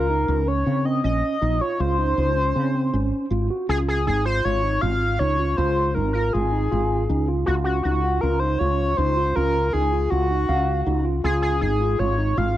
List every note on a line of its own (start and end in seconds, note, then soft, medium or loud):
0.00 0.24 C#2 medium
0.00 0.49 A#4 medium
0.10 0.41 D#4 medium
0.28 0.62 C#2 medium
0.47 0.63 C#4 medium
0.47 0.87 C#5 loud
0.66 1.00 C#3 medium
0.66 0.82 C4 medium
0.85 1.01 C4 medium
0.85 1.03 D#5 medium
1.04 1.21 A#1 medium
1.04 1.35 C#4 medium
1.04 1.63 D#5 medium
1.42 1.59 A#1 medium
1.42 1.58 D#4 medium
1.61 1.77 F4 medium
1.61 1.82 C#5 medium
1.80 2.14 C#2 medium
1.80 1.96 F4 medium
1.80 3.32 C5 loud
1.99 2.30 D#4 medium
2.18 2.52 C#2 medium
2.37 2.52 C#4 medium
2.56 2.90 C#3 medium
2.56 2.71 C4 medium
2.75 2.90 C4 medium
2.93 3.11 G#1 medium
2.93 3.25 C#4 medium
3.30 3.48 G#1 medium
3.30 3.47 F4 medium
3.50 3.66 F#4 medium
3.69 4.08 C#2 medium
3.69 4.00 F4 medium
3.69 3.78 G#4 medium
3.88 4.06 G#4 medium
4.07 4.41 G#1 medium
4.07 4.22 D#4 medium
4.07 4.25 G#4 medium
4.26 4.41 F4 medium
4.26 4.46 C5 medium
4.45 4.79 G#1 medium
4.45 4.61 F4 medium
4.45 4.83 C#5 loud
4.64 4.79 D#4 medium
4.81 5.16 G#1 medium
4.81 5.14 F4 medium
4.81 5.21 F5 loud
5.19 5.54 C#2 medium
5.19 5.36 D#4 medium
5.19 5.58 C#5 loud
5.39 5.55 F4 medium
5.57 5.98 C#2 loud
5.57 5.89 F4 medium
5.57 5.96 C5 loud
5.94 6.30 G#1 medium
5.94 6.12 D#4 medium
5.94 6.12 A#4 medium
6.13 6.31 F4 medium
6.13 6.34 A#4 medium
6.33 6.68 G#1 medium
6.33 6.49 F4 medium
6.33 7.28 G#4 loud
6.53 6.68 D#4 medium
6.72 7.06 G#1 medium
6.72 7.03 F4 medium
7.09 7.43 C#2 medium
7.09 7.25 D#4 medium
7.28 7.44 F4 medium
7.46 7.81 C#2 medium
7.46 7.78 F4 medium
7.46 7.55 F#4 medium
7.64 7.82 F#4 medium
7.83 8.19 C#2 medium
7.83 8.01 D#4 medium
7.83 8.22 F#4 medium
8.04 8.20 F4 medium
8.21 8.57 C#2 medium
8.21 8.38 F4 medium
8.21 8.41 A#4 medium
8.39 8.58 D#4 medium
8.39 8.60 C5 medium
8.59 8.94 C#2 medium
8.59 8.91 F4 medium
8.59 8.99 C#5 medium
8.97 9.32 C#2 medium
8.97 9.14 D#4 medium
8.97 9.37 C5 loud
9.17 9.33 F4 medium
9.36 9.70 C#2 medium
9.36 9.67 F4 medium
9.36 9.74 A#4 loud
9.73 10.08 C#2 medium
9.73 9.89 D#4 medium
9.73 10.12 G#4 medium
9.93 10.08 F4 medium
10.10 10.45 C#2 medium
10.10 10.27 F4 medium
10.10 11.05 F#4 medium
10.31 10.46 D#4 medium
10.49 10.83 C#2 medium
10.49 10.80 F5 medium
10.86 11.20 C#2 medium
10.86 11.02 D#4 medium
11.05 11.21 F4 medium
11.24 11.63 C#2 medium
11.24 11.55 F4 medium
11.24 11.42 G#4 medium
11.42 11.60 G#4 medium
11.61 11.95 G#1 medium
11.61 11.77 D#4 medium
11.61 12.01 G#4 medium
11.81 11.96 F4 medium
11.99 12.33 G#1 medium
11.99 12.15 F4 medium
11.99 12.39 C#5 medium
12.18 12.34 D#4 medium
12.37 12.57 G#1 medium
12.37 12.57 F4 medium
12.37 12.57 F5 medium